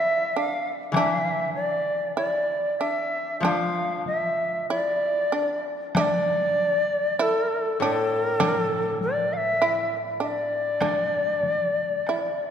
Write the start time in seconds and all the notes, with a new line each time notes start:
Already playing: E4 E5
0.36 D4 F5
0.92 E3 E5, taiko rim, taiko high
0.97 D4
1.55 D5
2.17 E4 D5
2.79 D4 E5
3.40 F3 F5, taiko rim, taiko high
3.45 D4
4.06 E5, taiko high
4.70 E4 D5
5.32 D4
5.95 D4 E5, taiko rim, taiko high
6.01 D5
7.19 E4 A4
7.80 A2 D4 A4
8.40 D4, taiko rim, taiko high
9.01 D5, taiko high
9.33 E5 F5
9.62 E4
10.20 D4 E5
10.26 D5
10.81 D4, taiko rim, taiko high
11.43 taiko high
12.07 E4, taiko rim